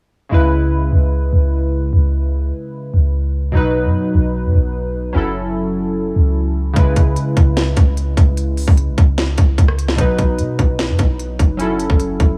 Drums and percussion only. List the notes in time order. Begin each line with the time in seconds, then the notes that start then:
6.76 kick, closed hi-hat
6.96 kick, closed hi-hat
7.16 closed hi-hat
7.37 kick, closed hi-hat
7.57 snare, closed hi-hat
7.77 kick, closed hi-hat
7.97 closed hi-hat
8.17 kick, closed hi-hat
8.37 closed hi-hat
8.57 open hi-hat
8.68 kick
8.77 closed hi-hat
8.98 kick, closed hi-hat
9.18 snare, closed hi-hat
9.38 kick, closed hi-hat
9.58 kick, closed hi-hat
9.68 cross-stick
9.79 closed hi-hat
9.88 snare
9.98 kick, closed hi-hat
10.18 kick, closed hi-hat
10.39 closed hi-hat
10.59 kick, closed hi-hat
10.79 snare, closed hi-hat
10.99 kick, closed hi-hat
11.19 closed hi-hat
11.39 kick, closed hi-hat
11.60 closed hi-hat
11.80 closed hi-hat
11.90 kick
12.00 closed hi-hat
12.20 kick, closed hi-hat